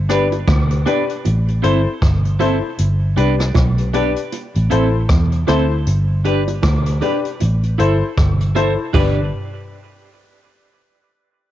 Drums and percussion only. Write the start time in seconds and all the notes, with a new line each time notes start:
0.09 cross-stick, closed hi-hat
0.32 closed hi-hat, high bongo
0.47 kick, cross-stick, closed hi-hat, high bongo
0.71 closed hi-hat
0.86 closed hi-hat, low bongo
1.09 closed hi-hat
1.25 closed hi-hat, high bongo
1.48 closed hi-hat
1.64 closed hi-hat
2.02 kick, cross-stick, closed hi-hat
2.25 closed hi-hat
2.40 closed hi-hat, high bongo, low bongo
2.78 closed hi-hat
3.17 closed hi-hat
3.39 cross-stick, closed hi-hat, high bongo
3.55 kick, cross-stick, closed hi-hat, high bongo
3.78 closed hi-hat
3.94 closed hi-hat, low bongo
4.16 closed hi-hat
4.32 closed hi-hat, high bongo
4.55 closed hi-hat
4.71 closed hi-hat
5.09 kick, cross-stick, closed hi-hat
5.32 closed hi-hat
5.48 cross-stick, closed hi-hat, high bongo, low bongo
5.86 closed hi-hat
6.25 closed hi-hat
6.47 closed hi-hat, high bongo
6.62 kick, cross-stick, closed hi-hat, high bongo
6.86 closed hi-hat
7.02 closed hi-hat, low bongo
7.25 closed hi-hat
7.40 closed hi-hat, high bongo
7.63 closed hi-hat
7.79 closed hi-hat
8.17 kick, cross-stick, closed hi-hat
8.40 closed hi-hat
8.56 closed hi-hat, high bongo, low bongo
8.94 kick, floor tom, china, high bongo